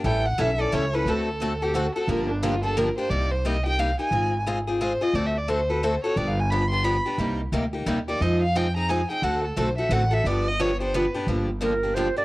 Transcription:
0.04 A1 E3 G3 C#4 E4 A4 G5
0.26 F#5
0.38 B1 E3 G3 C#4 E4 A4 E5
0.58 C#4 E4 A4 D5
0.72 C#2 E3 G3 C#4 E4 A4 C#5
0.93 C#4 E4 A4 B4
1.05 D2 D3 A3 C4 F#4 A4
1.41 D3 A3 C4 F#4 A4
1.62 C4 F#4 G4 A4
1.75 D3 A3 C4 F#4 A4
1.95 C4 F#4 A4
2.08 G1 D3 F3 A#3 D4 G4 A#4
2.30 D4
2.43 D3 F3 A#3 D4 F4 G4
2.63 A#3 D4 G4 A4
2.77 D3 F3 A#3 D4 G4 A#4
2.98 A#3 D4 G4 C5
3.10 C2 C3 G3 A#3 D#4 G4 D5
3.32 C5
3.45 C3 G3 A#3 D#4 G4 D#5
3.66 A#3 D#4 G4 G5
3.79 C3 G3 A#3 D#4 G4 F5
3.99 A#3 D#4 G4 G#5
4.11 G#1 G#3 C4 F4 G#4
4.46 G#3 C4 F4 G#4
4.67 C4 F4 G#4
4.81 G#3 C4 F4 G#4 C5
5.01 C4 F4 G#4 D#5
5.14 D2 D3 A3 C4 F#4 A4 D5
5.27 E5
5.38 D5
5.48 D3 A3 C4 F#4 A4 C5
5.70 C4 F#4 A4 B4
5.83 D3 A3 C4 F#4 A4 C5
6.04 C4 F#4 A4 C#5
6.16 G1 D3 F3 B3 D4 G4 D5
6.28 F5
6.40 G#5
6.50 D3 F3 B3 D4 G4 B5
6.70 B3 D4 G4 C6
6.84 D3 F3 B3 D4 G4 B5
7.06 B3 D4 G4
7.18 C2 C3 G3 A#3 D#4 G4
7.52 D2 C3 G3 A#3 D#4 G4
7.73 A#3 D#4 G4
7.86 D#2 C3 G3 A#3 D#4 G4
8.08 A#3 D#4 G4 D5
8.20 F2 F3 G#3 C4 D#4 F4 G#4 C5 D#5
8.42 F5
8.56 F3 G#3 C4 D#4 F4 G#4 C5 G5
8.76 C4 D#4 G#4 A#5
8.89 F3 G#3 C4 D#4 F4 G#4 C5 G#5
9.10 C4 D#4 G#4 G5
9.22 D2 D3 A3 C4 F#4 A4 F#5
9.45 A4
9.57 B1 D3 A3 C4 F#4 A4 C5
9.78 C4 F#4 A4 E5
9.89 A1 D3 A3 C4 F#4 A4 F#5
10.11 C4 F#4 A4 E5
10.24 G1 D3 F3 B3 D4 G4 D5
10.48 D#5
10.60 D3 F3 B3 D4 G4 C#5
10.80 B3 D4 G4 C5
10.94 D3 F3 B3 D4 G4 B4
11.14 B3 D4 G4
11.27 G1 D3 F3 A#3 D4 G4
11.61 D3 F3 A#3 D4 G4 A#4
11.83 A#3 D4 G4
11.95 D3 F3 A#3 D4 G4 C5
12.16 A#3 D4 G4 D5

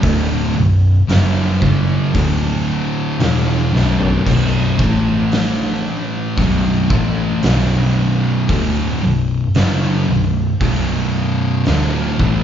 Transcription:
0.03 D2 A2 D3, kick, open hi-hat
0.57 B1 F#2
1.09 F#1 F#2 C#3 F#3, snare, open hi-hat
1.62 F#1 F#2 C#3 F#3, kick
2.14 D2 A2 D3, kick, open hi-hat
3.20 E1 E2 B2 E3, snare, open hi-hat
3.73 B1 F#2 B2, snare
4.01 floor tom
4.25 B1 F#2 B2, kick, crash
4.79 A1 A2 E3 A3, kick
5.32 snare, open hi-hat
6.37 B1 F#2 B2, kick, open hi-hat
6.90 A1 A2 E3 A3, kick
7.43 B1 F#2 B2, snare, open hi-hat
8.49 D2 A2 D3, kick, open hi-hat
9.03 B1 F#2
9.55 F#1 F#2 C#3 F#3, snare, open hi-hat
10.08 B1 F#2
10.61 B1 F#2 B2, kick, open hi-hat
11.65 D2 A2 D3, snare, open hi-hat
12.19 A1 A2 E3 A3, kick

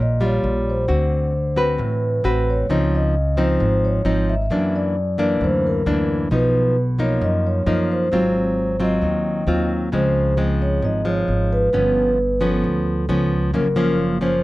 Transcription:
Already playing: A#2
0.00 A#1 D#5
0.21 G3 F4
0.25 C#5
0.43 A#1
0.70 C5
0.88 D2 D3 C4 F#4
1.56 C4 F#4 B4
1.78 A1 A2
2.24 A1 C4 F#4 B4
2.50 C#5
2.69 C#2 C#3 F3 C4 D#4
2.95 D#5
3.37 F3 C4 D#4 C5
3.60 G#1 G#2
3.85 C#5
4.05 G#1 F3 C4 D#4
4.29 E5
4.50 F#2 E3 A#3 D4
4.76 D5
5.18 E3 A#3 D4 D5
5.41 D2 F#2 C5
5.66 A#4
5.86 D2 E3 A#3 D4
6.31 B1 B2 F3 D#4 B4
6.99 F3 A#3 D#4 C#5
7.21 F#2 D#5
7.47 C#5
7.66 F#2 F3 A#3 D#4
7.92 C5
8.12 G#1 G#2 F#3 C4 F4
8.80 F#3 C4 F4 D#5
9.01 D#2 D#3
9.47 D#2 F#3 C4 F4
9.92 C#2 C#3 F3 G#3 C4 C5
10.37 F3 G#3 C4
10.62 C#5
10.82 G#1 G#2 D#5
11.05 F3 G#3 C#5
11.28 G#1
11.53 B4
11.73 G1 G2 F3 B3 C#4
12.41 F3 B3 C#4 A4
12.64 D2
13.09 C#2 F3 B3 C#4
13.53 F#1 F#2 F3 A#3 C#4 A#4
13.76 F3 A#3 C#4
14.21 F3 A#3 C#4 C5

